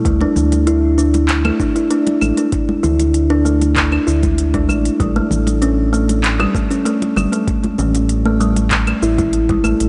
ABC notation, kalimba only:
X:1
M:4/4
L:1/16
Q:1/4=97
K:Dlyd
V:1 name="Kalimba"
A, D3 E z D z2 A, D E D2 A, D | z2 E z2 D A, z2 D E3 D A, z | =G, A,3 C z A, z2 G, A, C A,2 G, A, | z2 C z2 A, =G, z2 A, E E z G, A, z |]